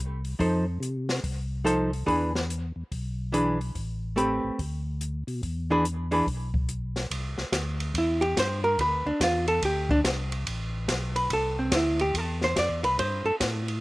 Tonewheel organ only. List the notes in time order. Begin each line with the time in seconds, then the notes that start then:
Already playing: C2
0.39 F2
0.80 C3
1.24 C2
2.07 E2
2.76 E2
2.91 B1
3.75 A1
4.43 A1
4.59 D2
5.27 B2
5.43 E2
6.26 B1
7.10 C2
7.37 C2
7.52 D2
7.94 E2
8.36 G2
8.78 D2
9.05 D2
9.20 E2
9.62 D2
10.04 C2
10.46 A1
10.88 B1
11.30 C2
11.71 D2
12.14 E2
12.56 F2
12.69 E2
12.83 C2
12.98 G2
13.24 G2
13.40 A2